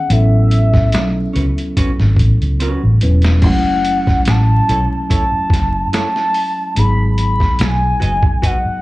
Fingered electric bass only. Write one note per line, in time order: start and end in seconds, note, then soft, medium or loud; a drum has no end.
0.10 0.94 A1 medium
0.94 1.26 B1 medium
1.36 1.53 C#2 medium
2.00 2.14 G#1 medium
2.17 2.35 A1 medium
2.41 2.73 C#2 medium
2.83 2.98 A1 medium
3.03 3.43 E1 medium
3.43 4.08 F#1 medium
4.27 4.59 A1 medium
4.69 4.86 B1 medium
5.33 muted fingered electric bass stroke soft
5.51 5.84 F#1 medium
6.77 7.42 G#1 medium
7.60 7.92 B1 medium
8.01 8.18 F#1 medium
8.66 muted fingered electric bass stroke soft